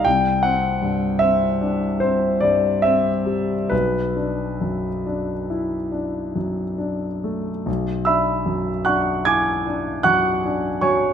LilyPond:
\new Staff \with { instrumentName = "Grand piano" } { \time 9/8 \key b \minor \tempo 4. = 49 << { g''8 fis''4 e''4 c''8 d''8 e''4 | b'2. r4. | r8 <e'' b'' e'''>4 <fis'' cis''' fis'''>8 <gis'' d''' gis'''>4 <fis'' cis''' fis'''>4 <cis'' gis'' cis'''>8 | } \\ { c,8 c'8 g,8 c'8 d'8 c'8 g,8 c'8 g8 | b,,8 d'8 fis,8 d'8 e'8 d'8 fis,8 d'8 a8 | b,,8 d'8 fis,8 d'8 e'8 d'8 fis,8 d'8 fis8 | } >> }